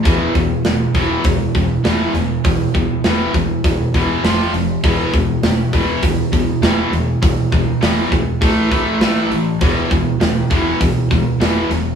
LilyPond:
<<
  \new Staff \with { instrumentName = "Distorted electric guitar" } { \clef bass \time 4/4 \key a \dorian \tempo 4 = 100 <e, b, e>8 <e, b,>8 <e, b,>8 <e, b, e>8 <e, b,>8 <e, b,>8 <e, b, e>8 <e, b,>8 | <e, b,>8 <e, b,>8 <e, b, e>8 <e, b,>8 <e, b,>8 <e, b, e>8 <f, c f>8 <f, c>8 | <e, b, e>8 <e, b,>8 <e, b,>8 <e, b, e>8 <e, b,>8 <e, b,>8 <e, b, e>8 <e, b,>8 | <e, b,>8 <e, b,>8 <e, b, e>8 <e, b,>8 <a, e a>8 <a, e a>8 <a, e a>8 <a, e>8 |
<e, b, e>8 <e, b,>8 <e, b,>8 <e, b, e>8 <e, b,>8 <e, b,>8 <e, b, e>8 <e, b,>8 | }
  \new Staff \with { instrumentName = "Picked electric bass" } { \clef bass \time 4/4 \key a \dorian e,,8 e,,8 e,,8 e,,8 e,,8 e,,8 e,,8 e,,8 | e,,8 e,,8 e,,8 e,,8 e,,8 e,,8 f,,8 f,,8 | e,,8 e,,8 e,,8 e,,8 e,,8 e,,8 e,,8 e,,8 | e,,8 e,,8 e,,8 e,,8 a,,8 a,,8 a,,8 a,,8 |
e,,8 e,,8 e,,8 e,,8 e,,8 e,,8 e,,8 e,,8 | }
  \new DrumStaff \with { instrumentName = "Drums" } \drummode { \time 4/4 <hho bd>8 <hho bd>8 <hho sn>8 <hho bd>8 <hho bd>8 <hho bd>8 <hho sn>8 hho8 | <hho bd>8 <hho bd>8 <hho sn>8 <hho bd>8 <hho bd>8 <hho bd>8 <hho sn>8 hho8 | <hho bd>8 <hho bd>8 <hho sn>8 <hho bd>8 <hho bd>8 <hho bd>8 <hho sn>8 hho8 | <hho bd>8 <hho bd>8 <hho sn>8 <hho bd>8 <hho bd>8 <hho bd>8 <hho sn>8 hho8 |
<hho bd>8 <hho bd>8 <hho sn>8 <hho bd>8 <hho bd>8 <hho bd>8 <hho sn>8 hho8 | }
>>